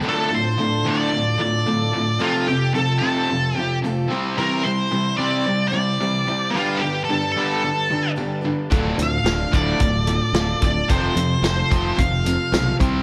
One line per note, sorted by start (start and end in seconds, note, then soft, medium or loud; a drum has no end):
0.02 0.29 D2 medium
0.02 0.29 A2 medium
0.02 0.30 D3 medium
0.02 0.31 A3 medium
0.02 0.31 D4 medium
0.02 0.31 F4 medium
0.02 0.30 A4 medium
0.09 0.34 A4 medium
0.31 0.55 D2 medium
0.31 0.56 A2 medium
0.31 0.58 D4 soft
0.31 0.58 F4 soft
0.31 0.58 A4 medium
0.31 0.89 C5 medium
0.58 0.83 D2 medium
0.58 0.83 A2 medium
0.58 1.12 D3 medium
0.58 1.11 A3 medium
0.58 1.11 D4 medium
0.58 1.13 F4 medium
0.58 1.13 A4 medium
0.85 1.11 D2 medium
0.85 1.11 A2 medium
0.85 1.11 D3 medium
0.85 1.40 D5 medium
1.12 1.37 D2 medium
1.12 1.37 A2 medium
1.12 1.40 A3 soft
1.12 1.40 D4 soft
1.12 1.39 F4 medium
1.12 1.38 A4 medium
1.39 1.64 D2 medium
1.39 1.64 A2 medium
1.39 1.65 D4 soft
1.39 1.66 F4 soft
1.39 1.66 A4 soft
1.39 2.24 D5 medium
1.66 1.91 D2 medium
1.66 1.92 A2 medium
1.66 1.93 D3 medium
1.66 1.94 A3 medium
1.66 1.93 D4 medium
1.66 1.92 F4 medium
1.66 1.91 A4 medium
1.92 2.18 D2 medium
1.92 2.18 A2 medium
1.92 2.19 D4 soft
1.92 2.19 F4 soft
1.92 2.20 A4 soft
2.19 2.46 F2 medium
2.19 2.46 C3 medium
2.19 2.47 F3 medium
2.19 2.46 F3 medium
2.19 2.47 A3 medium
2.19 2.47 C4 medium
2.19 2.48 F4 medium
2.19 2.46 F4 medium
2.19 2.46 A4 medium
2.47 2.72 F2 medium
2.47 2.72 C3 medium
2.47 2.73 C4 soft
2.47 2.74 F4 soft
2.47 2.74 G4 medium
2.47 2.75 A4 soft
2.73 2.98 F2 medium
2.73 2.98 C3 medium
2.73 3.29 F3 medium
2.73 3.29 A3 medium
2.73 3.29 C4 medium
2.73 3.29 F4 medium
2.73 2.98 A4 medium
2.73 3.30 A4 medium
2.99 3.27 F2 medium
2.99 3.27 C3 medium
2.99 3.27 F3 medium
2.99 3.56 A4 medium
3.30 3.54 F2 medium
3.30 3.54 C3 medium
3.30 3.57 A3 medium
3.30 3.57 C4 medium
3.30 3.58 F4 soft
3.30 3.56 A4 medium
3.56 3.81 F2 medium
3.56 3.81 C3 medium
3.56 3.84 C4 soft
3.56 3.85 F4 soft
3.56 3.78 G4 medium
3.56 3.84 A4 soft
3.84 4.08 F2 medium
3.84 4.08 C3 medium
3.84 4.11 F3 medium
3.84 4.11 A3 medium
3.84 4.11 C4 medium
3.84 4.12 F4 medium
3.84 4.10 A4 medium
4.10 4.36 C3 medium
4.10 4.36 G3 medium
4.10 4.37 G3 soft
4.10 4.36 C4 medium
4.10 4.38 C4 medium
4.10 4.38 E4 medium
4.10 4.38 C5 medium
4.37 4.63 C3 medium
4.37 4.65 C3 medium
4.37 4.65 E3 medium
4.37 4.63 G3 medium
4.37 4.65 G3 medium
4.37 4.63 C4 medium
4.37 4.65 C4 medium
4.37 4.66 E4 medium
4.37 4.65 A#4 medium
4.37 4.64 C5 medium
4.64 4.89 C3 medium
4.64 4.89 G3 medium
4.64 4.91 C4 soft
4.64 4.91 E4 soft
4.64 5.14 C5 medium
4.64 4.92 C5 soft
4.68 4.90 G3 soft
4.91 5.45 C3 medium
4.91 5.16 C3 medium
4.91 5.46 E3 medium
4.91 5.44 G3 medium
4.91 5.16 G3 medium
4.91 5.46 C4 medium
4.91 5.46 E4 medium
4.91 5.47 C5 medium
5.17 5.44 C3 medium
5.17 5.44 G3 medium
5.17 5.44 C4 medium
5.17 5.67 D5 medium
5.45 5.71 C3 medium
5.45 5.72 G3 soft
5.45 5.71 G3 medium
5.45 5.73 C4 medium
5.45 5.72 E4 medium
5.45 5.72 C5 medium
5.68 6.54 D5 loud
5.73 5.97 C3 medium
5.73 5.98 G3 medium
5.73 6.00 G3 soft
5.73 6.01 C4 soft
5.73 6.00 E4 soft
5.73 6.00 C5 soft
6.00 6.25 C3 medium
6.00 6.27 C3 medium
6.00 6.27 E3 medium
6.00 6.25 G3 medium
6.00 6.28 G3 medium
6.00 6.28 C4 medium
6.00 6.28 E4 medium
6.00 6.27 C5 medium
6.28 6.52 C3 medium
6.28 6.52 G3 medium
6.28 6.55 G3 soft
6.28 6.56 C4 soft
6.28 6.55 E4 soft
6.28 6.55 C5 soft
6.50 6.79 G2 medium
6.50 6.80 F4 medium
6.54 6.80 D3 medium
6.54 6.80 G3 medium
6.54 6.82 G3 medium
6.54 6.83 D4 medium
6.54 6.82 G4 medium
6.54 6.80 B4 medium
6.77 7.06 G2 medium
6.77 7.04 G4 medium
6.81 7.06 D3 medium
6.81 7.09 D4 soft
6.81 7.09 G4 soft
6.81 7.09 B4 soft
7.04 7.31 A4 medium
7.09 7.33 G2 medium
7.09 7.33 D3 medium
7.09 7.62 G3 medium
7.09 7.64 D4 medium
7.09 7.64 G4 medium
7.09 7.64 B4 medium
7.32 8.11 A4 medium
7.37 7.62 G2 medium
7.37 7.62 D3 medium
7.37 7.62 G3 medium
7.63 7.87 G2 medium
7.63 7.87 D3 medium
7.63 7.90 G3 medium
7.63 7.91 D4 medium
7.63 7.89 G4 medium
7.63 7.88 B4 medium
7.89 8.14 G2 medium
7.89 8.15 D3 medium
7.89 8.15 D4 soft
7.89 8.16 G4 soft
7.89 8.16 B4 soft
8.16 8.42 G2 medium
8.16 8.42 D3 medium
8.16 8.44 G3 medium
8.16 8.42 D4 medium
8.16 8.41 G4 medium
8.16 8.40 B4 medium
8.41 8.69 D3 medium
8.41 8.70 D4 soft
8.41 8.70 G4 soft
8.41 8.70 B4 soft
8.45 8.69 G2 medium
8.70 8.91 D1 medium
8.70 8.96 D2 medium
8.70 8.96 A2 medium
8.70 8.98 D3 medium
8.70 8.97 D3 medium
8.70 8.98 A3 medium
8.70 8.98 D4 medium
8.70 8.98 F4 medium
8.70 8.96 A4 medium
8.70 kick loud
8.70 closed hi-hat medium
8.97 9.17 D2 medium
8.97 9.23 D2 medium
8.97 9.24 A2 medium
8.97 9.24 D4 soft
8.97 9.25 F4 soft
8.97 9.25 A4 soft
8.97 closed hi-hat medium
9.02 9.55 F5 medium
9.24 9.44 D1 medium
9.24 9.50 D2 medium
9.24 9.50 A2 medium
9.24 9.80 D3 medium
9.24 9.79 A3 medium
9.24 9.80 D4 medium
9.24 9.81 F4 medium
9.24 9.80 A4 medium
9.24 snare loud
9.24 closed hi-hat medium
9.52 9.72 D1 medium
9.52 9.78 D2 medium
9.52 9.78 A2 medium
9.52 9.78 D3 medium
9.52 10.63 D5 medium
9.52 kick medium
9.52 closed hi-hat medium
9.79 10.19 D1 medium
9.79 10.04 D2 medium
9.79 10.04 A2 medium
9.79 10.07 A3 soft
9.79 10.08 D4 medium
9.79 10.06 A4 medium
9.79 kick medium
9.79 closed hi-hat medium
10.07 10.32 D2 medium
10.07 10.32 A2 medium
10.07 10.33 D4 soft
10.07 10.34 F4 soft
10.07 10.34 A4 soft
10.07 closed hi-hat soft
10.33 10.52 D1 medium
10.33 10.59 D2 medium
10.33 10.59 A2 medium
10.33 10.61 D3 medium
10.33 10.62 A3 medium
10.33 10.61 D4 medium
10.33 10.61 F4 medium
10.33 10.59 A4 medium
10.33 snare loud
10.33 closed hi-hat medium
10.61 10.81 D1 medium
10.61 10.87 D2 medium
10.61 10.87 A2 medium
10.61 10.89 D4 soft
10.61 10.88 F4 soft
10.61 10.88 A4 soft
10.61 10.88 D5 medium
10.61 kick medium
10.61 closed hi-hat medium
10.88 11.09 F1 medium
10.88 11.14 F2 medium
10.88 11.14 C3 medium
10.88 11.16 F3 medium
10.88 11.14 F3 medium
10.88 11.16 A3 medium
10.88 11.16 C4 medium
10.88 11.15 F4 medium
10.88 11.13 A4 medium
10.88 11.43 C5 medium
10.88 kick loud
10.88 closed hi-hat medium
11.14 11.35 F2 medium
11.14 11.41 F2 medium
11.14 11.41 C3 medium
11.14 11.42 C4 soft
11.14 11.43 F4 soft
11.14 11.43 A4 soft
11.14 closed hi-hat medium
11.42 11.62 F1 medium
11.42 11.68 F2 medium
11.42 11.68 C3 medium
11.42 11.98 F3 medium
11.42 11.95 A3 medium
11.42 11.96 C4 medium
11.42 11.96 F4 medium
11.42 11.97 A4 medium
11.42 12.00 C5 medium
11.42 snare medium
11.42 closed hi-hat medium
11.70 11.90 F1 medium
11.70 11.96 F2 medium
11.70 11.96 C3 medium
11.70 11.97 F3 medium
11.70 kick medium
11.70 closed hi-hat medium
11.96 12.36 F1 medium
11.96 12.23 F2 medium
11.96 12.23 C3 medium
11.96 12.24 A3 soft
11.96 12.24 C4 medium
11.96 12.24 F4 medium
11.96 12.23 A4 medium
11.96 12.76 F5 medium
11.96 kick loud
11.96 closed hi-hat medium
12.24 12.50 F2 medium
12.24 12.50 C3 medium
12.24 12.51 C4 soft
12.24 12.51 F4 soft
12.24 12.51 A4 medium
12.24 closed hi-hat medium
12.50 12.71 B1 medium
12.50 12.77 F2 medium
12.50 12.77 C3 medium
12.50 12.79 F3 medium
12.50 12.79 A3 medium
12.50 12.79 C4 medium
12.50 12.79 F4 medium
12.50 12.79 A4 medium
12.50 snare loud
12.50 closed hi-hat medium
12.79 12.99 C2 medium
12.79 13.03 C3 medium
12.79 13.03 G3 medium
12.79 13.03 G3 soft
12.79 13.03 C4 medium
12.79 13.03 E4 medium
12.79 13.03 C5 medium
12.79 kick medium
12.79 closed hi-hat medium